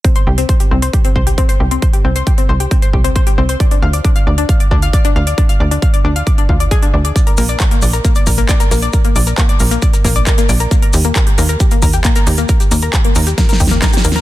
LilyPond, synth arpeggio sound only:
\new Staff \with { instrumentName = "Synth arpeggio sound" } { \time 4/4 \key c \minor \tempo 4 = 135 c'16 c''16 g'16 c'16 c''16 g'16 c'16 c''16 g'16 c'16 c''16 g'16 c'16 c''16 g'16 c'16 | c''16 g'16 c'16 c''16 g'16 c'16 c''16 g'16 c'16 c''16 g'16 c'16 c''16 g'16 c'16 c''16 | d''16 d'16 f''16 d''16 d'16 f''16 d''16 d'16 f''16 d''16 d'16 f''16 d''16 d'16 f''16 d''16 | d'16 f''16 d''16 d'16 f''16 d''16 d'16 f''16 d''16 d'16 f'16 d''16 aes'16 d'16 d'16 d''16 |
d''16 bes'16 bes16 d''16 bes'16 bes16 d''16 bes'16 bes16 d''16 bes'16 bes16 d''16 bes'16 bes16 d''16 | bes'16 bes16 d''16 bes'16 bes16 d''16 bes'16 bes16 d''16 bes'16 bes16 d''16 bes'16 bes16 d''16 bes'16 | bes16 bes'16 g'16 bes16 bes'16 g'16 bes16 bes'16 g'16 bes16 bes'16 g'16 bes16 bes'16 g'16 bes16 | bes'16 g'16 bes16 bes'16 g'16 bes16 bes'16 g'16 bes16 bes'16 g'16 bes16 bes'16 g'16 bes16 bes'16 | }